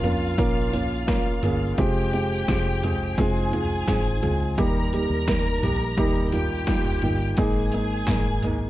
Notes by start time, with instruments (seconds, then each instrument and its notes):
Already playing: upright piano A#2 A#3 C#4 F4 G#4 A#4, violin section F4 F5
0.03 fingered electric bass F2, upright piano A#3 C#4 F4 A#4, closed hi-hat, floor tom
0.38 fingered electric bass A#1, upright piano A#3 C#4 F4 A#4, kick, closed hi-hat
0.72 upright piano A#3 C#4 F4 A#4, closed hi-hat, floor tom
1.07 upright piano A#3 C#4 F4 A#4, kick, snare, closed hi-hat
1.43 fingered electric bass G1, upright piano A#3 C#4 F4 G#4, closed hi-hat, floor tom
1.77 fingered electric bass F1, upright piano G#3 C4 F4 G4, violin section G4 G5, kick, closed hi-hat
2.13 upright piano G#3 C4 F4 G4, closed hi-hat
2.48 fingered electric bass F1, upright piano G#3 C4 F4 G4, kick, snare, closed hi-hat
2.83 upright piano G#3 C4 F4 G#4, closed hi-hat, floor tom
3.17 fingered electric bass F1, upright piano G#3 C4 F4 G#4, violin section G#4 G#5, kick, closed hi-hat
3.53 upright piano G#3 C4 F4 G#4, closed hi-hat, floor tom
3.87 fingered electric bass G#1, upright piano G#3 C4 F4 G#4, kick, snare, closed hi-hat
4.22 fingered electric bass C#2, upright piano G#3 C4 F4 G#4, closed hi-hat, floor tom
4.58 fingered electric bass D#2, upright piano D#3 G3 A#3 D#4 G4, violin section A#4 A#5, kick, closed hi-hat
4.93 upright piano G3 A#3 D#4 G4, closed hi-hat
5.10 fingered electric bass D#2
5.28 upright piano G3 A#3 D#4 A#4, kick, snare, closed hi-hat
5.63 fingered electric bass A#1, upright piano G3 A#3 D#4 G4, closed hi-hat, floor tom
5.97 fingered electric bass D#2, upright piano G3 A#3 D#4 G4, kick, closed hi-hat
6.32 upright piano G3 A#3 D#4 F4, violin section G4 G5, closed hi-hat, floor tom
6.67 upright piano G3 A#3 D#4 F4, kick, snare, closed hi-hat
6.85 floor tom
7.02 fingered electric bass G1, upright piano G3 A#3 D#4 F4, closed hi-hat, floor tom
7.37 fingered electric bass G#1, upright piano G#2 G#3 A#3 D#4 G#4, violin section G#4 G#5, kick, closed hi-hat
7.72 upright piano G#3 A#3 D#4 G#4, closed hi-hat
8.07 fingered electric bass G#1, upright piano G#3 A#3 D#4 A#4, kick, snare, closed hi-hat, tambourine
8.42 upright piano G#3 A#3 D#4 A#4, closed hi-hat, floor tom